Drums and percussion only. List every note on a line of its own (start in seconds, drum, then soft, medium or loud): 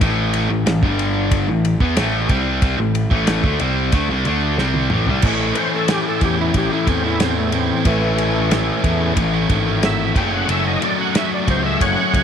0.01 kick loud
0.01 ride medium
0.33 ride medium
0.67 snare loud
0.67 ride medium
0.83 kick loud
0.99 ride medium
1.31 kick loud
1.31 ride loud
1.65 ride medium
1.80 kick loud
1.97 snare loud
1.97 ride loud
2.29 kick loud
2.29 ride medium
2.62 kick loud
2.62 ride medium
2.95 ride medium
3.11 kick loud
3.27 snare loud
3.27 ride loud
3.44 kick loud
3.60 ride medium
3.92 kick loud
3.92 ride medium
4.25 ride medium
4.58 snare medium
4.74 high tom medium
4.90 mid tom medium
5.06 floor tom medium
5.22 kick loud
5.22 crash loud
5.55 ride medium
5.88 snare loud
5.88 ride loud
6.21 kick medium
6.21 ride medium
6.54 kick medium
6.54 ride medium
6.87 kick medium
6.87 ride medium
7.20 snare loud
7.20 ride loud
7.52 ride medium
7.85 kick loud
7.85 ride medium
8.18 ride medium
8.51 snare loud
8.51 ride medium
8.84 kick medium
8.84 ride medium
9.17 kick medium
9.17 ride medium
9.50 kick medium
9.50 ride medium
9.83 snare loud
9.83 ride medium
10.16 kick loud
10.16 ride medium
10.49 ride medium
10.82 ride medium
11.15 snare loud
11.15 ride loud
11.48 kick medium
11.48 ride medium
11.81 kick medium
11.81 ride loud
12.14 kick medium
12.14 ride medium